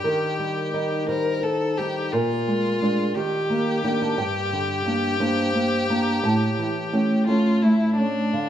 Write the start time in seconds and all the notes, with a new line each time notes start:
Already playing: G4
0.04 D#3 A#4
0.39 G3
0.74 G3 D#4 D#5
1.08 G3 D#4 A#4 C5
1.43 D#4 A4
1.78 G3 D#4 G4
2.12 A#2 F4 A#4
2.47 G#3
2.81 G#3 D4 G#4
3.15 D#3 G4
3.50 A#3
3.84 A#3 D4 G5
4.02 A5
4.18 G2 G5
4.53 D3
4.86 A#3 D4
5.20 A#3 D4 C5
5.55 A#3
5.90 A#3 D4 A#5
6.24 A2 A5
6.59 E3
6.93 A3 C#4 G5
7.27 A3 C#4 F4 A5
7.62 A3 E4
7.97 A3 C#4 D4
8.33 D3 F5